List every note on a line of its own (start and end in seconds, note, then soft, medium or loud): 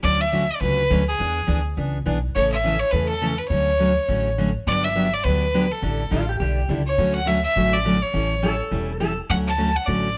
0.03 0.50 D2 medium
0.03 0.23 D3 medium
0.03 0.23 F#3 medium
0.03 0.23 A3 medium
0.03 0.23 C#4 medium
0.03 0.24 F#4 medium
0.03 0.23 D5 loud
0.21 0.53 E5 medium
0.32 0.43 D3 medium
0.32 0.44 F#3 medium
0.32 0.44 A3 medium
0.32 0.44 C#4 medium
0.32 0.44 F#4 medium
0.51 0.61 D5 medium
0.61 0.86 C#2 medium
0.61 0.81 D3 medium
0.61 0.82 F#3 medium
0.61 0.82 A3 soft
0.61 0.82 C#4 medium
0.61 0.82 F#4 soft
0.61 1.05 B4 medium
0.90 1.15 D2 medium
0.90 1.01 D3 medium
0.90 1.02 F#3 medium
0.90 1.02 A3 medium
0.90 1.02 C#4 medium
0.90 1.02 F#4 medium
1.08 1.62 G#4 medium
1.18 1.43 E2 medium
1.18 1.39 E3 medium
1.18 1.39 B3 medium
1.18 1.39 D4 medium
1.18 1.39 G#4 medium
1.47 1.73 D2 medium
1.47 1.59 E3 medium
1.47 1.59 B3 medium
1.47 1.59 D4 medium
1.47 1.59 G#4 medium
1.77 2.02 C#2 medium
1.77 1.97 E3 medium
1.77 1.97 B3 medium
1.77 1.97 D4 medium
1.77 1.97 G#4 medium
2.06 2.31 B1 medium
2.06 2.17 E3 medium
2.06 2.17 B3 medium
2.06 2.17 D4 medium
2.06 2.18 G#4 medium
2.35 2.82 A1 medium
2.35 2.55 C#3 medium
2.35 2.55 E3 medium
2.35 2.55 A3 medium
2.35 2.55 C#4 medium
2.35 2.55 A4 medium
2.35 2.52 C#5 loud
2.52 2.81 E5 loud
2.64 2.75 C#3 medium
2.64 2.75 E3 medium
2.64 2.75 A3 medium
2.64 2.75 C#4 medium
2.64 2.76 A4 medium
2.80 2.93 C#5 loud
2.91 3.39 E2 medium
2.91 3.12 C#3 soft
2.91 3.13 E3 medium
2.91 3.13 A3 medium
2.91 3.13 C#4 medium
2.91 3.13 A4 medium
2.91 3.09 B4 medium
3.09 3.40 A4 medium
3.21 3.33 C#3 medium
3.21 3.33 E3 medium
3.21 3.33 A3 medium
3.21 3.33 C#4 medium
3.21 3.33 A4 medium
3.38 3.48 B4 medium
3.48 3.97 D2 medium
3.48 3.70 D3 medium
3.48 3.71 F#3 soft
3.48 3.71 A3 medium
3.48 3.71 C#4 medium
3.48 3.71 F#4 medium
3.48 4.32 C#5 loud
3.80 3.91 D3 medium
3.80 3.91 F#3 medium
3.80 3.91 A3 medium
3.80 3.91 C#4 medium
3.80 3.91 F#4 medium
4.08 4.55 A1 medium
4.08 4.28 D3 medium
4.08 4.28 F#3 soft
4.08 4.29 A3 medium
4.08 4.29 C#4 soft
4.08 4.29 F#4 medium
4.38 4.49 D3 medium
4.38 4.49 F#3 medium
4.38 4.49 A3 medium
4.38 4.49 C#4 medium
4.38 4.50 F#4 medium
4.67 5.13 G1 medium
4.67 4.87 D3 soft
4.67 4.87 F#3 medium
4.67 4.87 B3 medium
4.67 4.87 D4 medium
4.67 4.87 G4 soft
4.67 4.86 D5 loud
4.85 5.15 E5 loud
4.95 5.06 D3 medium
4.95 5.07 F#3 medium
4.95 5.07 B3 medium
4.95 5.07 D4 medium
4.95 5.07 G4 medium
5.14 5.26 D5 medium
5.24 5.71 D2 medium
5.24 5.45 D3 medium
5.24 5.45 F#3 soft
5.24 5.45 B3 medium
5.24 5.45 D4 medium
5.24 5.45 G4 medium
5.24 5.73 B4 medium
5.54 5.65 D3 medium
5.54 5.65 F#3 medium
5.54 5.65 B3 medium
5.54 5.65 D4 medium
5.54 5.66 G4 medium
5.71 6.29 A4 medium
5.82 6.06 A1 medium
5.82 6.02 D3 medium
5.82 6.03 G3 medium
5.82 6.03 D4 medium
5.82 6.03 E4 medium
5.82 6.03 A4 medium
6.11 6.36 A1 medium
6.11 6.22 D3 medium
6.11 6.22 G3 medium
6.11 6.23 D4 medium
6.11 6.23 E4 medium
6.11 6.29 F4 medium
6.11 6.23 A4 medium
6.29 6.39 G4 medium
6.40 6.65 B1 medium
6.40 6.60 D3 medium
6.40 6.61 G3 medium
6.40 6.61 D4 medium
6.40 6.61 E4 medium
6.40 6.68 G4 medium
6.40 6.61 A4 medium
6.69 6.94 C#2 medium
6.69 6.80 D3 medium
6.69 6.81 G3 medium
6.69 6.81 D4 medium
6.69 6.81 E4 medium
6.69 6.81 A4 medium
6.87 7.14 C#5 medium
6.98 7.44 D2 medium
6.98 7.18 D3 medium
6.98 7.18 F#3 medium
6.98 7.18 A3 medium
6.98 7.18 C#4 medium
6.98 7.19 F#4 medium
7.15 7.29 F#5 medium
7.26 7.37 D3 medium
7.26 7.38 F#3 medium
7.26 7.38 A3 medium
7.26 7.38 C#4 medium
7.26 7.38 F#4 medium
7.26 7.44 E5 loud
7.45 7.75 E5 loud
7.56 8.02 A1 medium
7.56 7.76 D3 medium
7.56 7.76 F#3 medium
7.56 7.76 A3 medium
7.56 7.76 C#4 medium
7.56 7.76 F#4 medium
7.74 8.04 D5 loud
7.85 7.96 D3 medium
7.85 7.96 F#3 medium
7.85 7.96 A3 medium
7.85 7.96 C#4 medium
7.85 7.97 F#4 medium
8.03 8.60 C#5 medium
8.13 8.60 A1 medium
8.13 8.33 E3 medium
8.13 8.33 G3 medium
8.13 8.34 C#4 medium
8.13 8.34 E4 medium
8.13 8.34 A4 medium
8.42 8.54 E3 medium
8.42 8.54 G3 medium
8.42 8.54 C#4 medium
8.42 8.54 E4 medium
8.42 8.99 A4 medium
8.42 8.54 A4 medium
8.71 9.18 E1 medium
8.71 8.91 E3 soft
8.71 8.91 G3 medium
8.71 8.91 C#4 medium
8.71 8.91 E4 medium
8.71 8.92 A4 medium
9.00 9.11 E3 medium
9.00 9.12 G3 medium
9.00 9.12 C#4 medium
9.00 9.12 E4 medium
9.00 9.18 A4 medium
9.00 9.12 A4 medium
9.30 9.76 D2 medium
9.30 9.49 D3 medium
9.30 9.49 F#3 medium
9.30 9.50 A3 medium
9.30 9.50 C#4 medium
9.30 9.50 F#4 medium
9.30 9.38 F#5 loud
9.48 9.78 A5 medium
9.58 9.69 D3 medium
9.58 9.69 F#3 medium
9.58 9.69 A3 medium
9.58 9.70 C#4 medium
9.58 9.70 F#4 medium
9.76 9.88 F#5 medium
9.87 10.18 A1 medium
9.87 10.07 D3 medium
9.87 10.07 F#3 soft
9.87 10.07 A3 medium
9.87 10.08 C#4 medium
9.87 10.07 F#4 medium
9.87 10.18 D5 medium